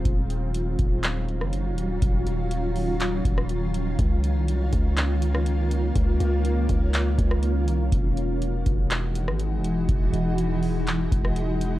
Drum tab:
HH |x-x-x-x-x-x-x-x-|x-x-x-o-x-x-x-x-|x-x-x-x-x-x-x-x-|x-x-x-x-x-x-x-x-|
CP |--------x-------|--------x-------|--------x-------|--------x-------|
SD |-----------r----|-----------r----|-----------r----|-----------r----|
BD |o-----o---------|o---------o-----|o-----o---------|o-----o---o-----|

HH |x-x-x-x-x-x-x-x-|x-x-x-o-x-x-x-x-|
CP |--------x-------|--------x-------|
SD |-----------r----|-----------r----|
BD |o-----o---------|o---------o-----|